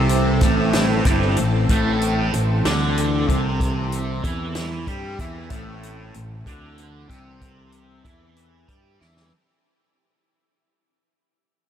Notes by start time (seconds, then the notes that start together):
Already playing: C2 C3 E3 C4 A4
0.09 closed hi-hat
0.41 A1 A2 A3, kick, closed hi-hat, maracas
0.73 snare, closed hi-hat, maracas
1.05 G1 G2 G3, kick, closed hi-hat, maracas
1.23 maracas
1.37 A1 A2, closed hi-hat
1.69 A1 A2 A3, kick, closed hi-hat
2.02 closed hi-hat
2.33 A1 A2, closed hi-hat
2.65 D2 D3 D4, snare, closed hi-hat
2.98 closed hi-hat
3.29 C2 C3 C4, kick, closed hi-hat
3.60 kick, closed hi-hat
3.92 closed hi-hat
4.24 E2 E3 E4, kick, closed hi-hat
4.55 snare, closed hi-hat
4.87 G2 G3 G4, kick, closed hi-hat
5.19 E2 E3 E4, kick, closed hi-hat
5.50 A1 A2 A3, kick, closed hi-hat
5.83 closed hi-hat
6.14 A1 A2, closed hi-hat
6.46 D2 D3 D4, kick, closed hi-hat
6.78 closed hi-hat
7.09 C2 C3 C4, kick, closed hi-hat
7.41 kick, closed hi-hat
7.72 closed hi-hat
8.05 E2 E3 E4, kick, closed hi-hat
8.36 closed hi-hat
8.68 G2 G3 G4, kick, closed hi-hat
9.00 E2 E3 E4, snare
9.17 snare